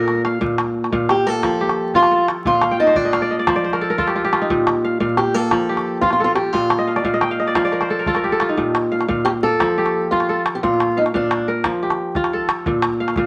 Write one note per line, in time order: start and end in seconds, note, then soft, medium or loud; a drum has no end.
0.00 0.40 A#2 medium
0.00 0.82 A#3 medium
0.00 0.22 A#4 medium
0.00 1.01 A#4 medium
0.00 0.25 C5 medium
0.08 calabash click soft
0.25 0.92 F5 medium
0.25 calabash click medium
0.41 0.91 A#2 medium
0.41 calabash thump medium
0.58 calabash click medium
0.84 calabash click soft
0.92 1.48 A#2 medium
0.92 1.92 F5 medium
0.92 calabash thump medium
1.09 1.27 G4 medium
1.09 calabash click medium
1.26 2.17 A#3 medium
1.26 1.95 A4 medium
1.43 2.50 F3 medium
1.43 calabash thump medium
1.43 calabash click medium
1.61 3.02 G4 medium
1.69 calabash click soft
1.94 3.46 F4 medium
1.94 2.27 F4 medium
1.94 calabash thump medium
2.03 calabash click soft
2.11 3.02 A4 medium
2.28 calabash click medium
2.45 2.95 A#2 medium
2.45 2.80 F4 medium
2.45 calabash thump medium
2.61 3.13 F5 medium
2.61 calabash click medium
2.71 3.65 G5 medium
2.80 2.96 D#4 medium
2.80 3.02 A5 medium
2.87 3.47 C5 medium
2.87 calabash click soft
2.95 3.52 A#2 medium
2.95 3.34 D4 medium
2.95 3.21 D5 medium
2.95 calabash thump medium
3.05 3.28 D#5 medium
3.13 4.13 F5 medium
3.13 calabash click medium
3.22 3.39 D5 medium
3.31 3.62 D#5 medium
3.39 3.55 D5 medium
3.47 4.54 F3 medium
3.47 3.64 C5 medium
3.47 calabash thump medium
3.47 calabash click medium
3.56 4.48 D5 medium
3.64 4.83 C5 medium
3.73 3.90 A#4 medium
3.73 calabash click soft
3.81 3.98 A4 medium
3.90 5.17 A#4 medium
3.98 4.15 F4 medium
3.98 4.56 A4 medium
3.98 calabash thump medium
4.07 4.24 G4 medium
4.07 calabash click soft
4.16 4.32 F4 medium
4.25 5.66 G4 medium
4.32 5.84 F4 medium
4.32 calabash click medium
4.42 6.04 D#4 medium
4.50 4.99 A#2 medium
4.50 calabash thump medium
4.67 calabash click medium
4.85 5.00 F5 medium
5.00 5.56 A#2 medium
5.00 6.00 F5 medium
5.00 calabash thump medium
5.17 5.34 G4 medium
5.17 calabash click medium
5.34 6.26 A#3 medium
5.34 6.01 A4 loud
5.51 6.59 F3 medium
5.51 calabash thump medium
5.51 calabash click medium
5.69 7.10 G4 medium
5.77 calabash click soft
6.01 6.11 F4 medium
6.01 7.54 F4 medium
6.01 calabash thump medium
6.10 6.23 F4 medium
6.10 calabash click soft
6.20 7.11 A4 medium
6.24 6.35 F4 medium
6.35 6.53 G4 medium
6.35 calabash click medium
6.53 7.03 A#2 medium
6.53 6.91 F4 medium
6.53 calabash thump medium
6.53 calabash click soft
6.62 calabash click soft
6.70 calabash click medium
6.79 7.02 D#5 medium
6.87 7.05 F5 medium
6.87 calabash click soft
6.96 7.20 D5 medium
6.96 calabash click soft
7.04 7.61 A#2 medium
7.04 7.31 F5 medium
7.04 calabash thump medium
7.14 7.39 D#5 medium
7.21 8.15 G5 medium
7.21 calabash click medium
7.31 7.56 F5 medium
7.40 7.71 D#5 medium
7.46 7.64 D5 medium
7.46 calabash click soft
7.55 8.63 F3 medium
7.55 8.56 F5 medium
7.55 calabash thump medium
7.55 calabash click medium
7.65 8.55 D5 medium
7.72 7.96 A#4 medium
7.72 calabash click soft
7.81 9.00 C5 medium
7.81 calabash click soft
7.89 8.07 A4 medium
7.89 calabash click soft
7.99 8.16 A#4 medium
8.06 8.41 F4 medium
8.06 8.32 A4 medium
8.06 calabash thump medium
8.15 8.38 A#4 medium
8.15 calabash click medium
8.24 9.65 G4 medium
8.32 8.64 A4 medium
8.40 9.92 F4 medium
8.40 calabash click medium
8.49 10.11 D#4 medium
8.49 calabash click soft
8.57 9.07 A#2 medium
8.57 calabash thump medium
8.75 calabash click medium
8.92 9.08 F5 medium
9.01 calabash click soft
9.08 9.65 A#2 medium
9.08 10.08 F5 medium
9.08 calabash thump medium
9.25 9.30 G4 medium
9.25 calabash click medium
9.43 10.35 A#3 medium
9.43 10.07 A4 medium
9.60 10.67 F3 medium
9.60 calabash thump medium
9.60 calabash click medium
9.78 11.19 G4 medium
9.86 calabash click soft
10.11 10.43 F4 medium
10.11 11.63 F4 medium
10.11 calabash thump medium
10.20 calabash click soft
10.29 11.20 A4 medium
10.46 calabash click medium
10.55 10.62 G4 medium
10.63 11.13 A#2 medium
10.63 10.97 F4 medium
10.63 calabash thump medium
10.80 calabash click medium
10.97 11.03 D#4 medium
10.97 11.14 F5 medium
11.06 calabash click soft
11.14 11.69 A#2 medium
11.14 11.50 D4 medium
11.14 12.14 F5 medium
11.14 calabash thump medium
11.31 calabash click medium
11.48 12.39 A#4 medium
11.64 12.71 F3 medium
11.64 calabash thump medium
11.64 calabash click medium
11.83 13.24 G4 medium
11.90 calabash click medium
12.15 13.26 F4 medium
12.15 calabash thump medium
12.24 calabash click medium
12.33 13.23 A4 medium
12.49 calabash click medium
12.66 13.16 A#2 medium
12.66 calabash thump medium
12.82 calabash click medium
13.00 13.17 F5 medium
13.08 calabash click medium
13.16 13.26 A#2 medium
13.16 13.26 F5 medium
13.16 calabash thump medium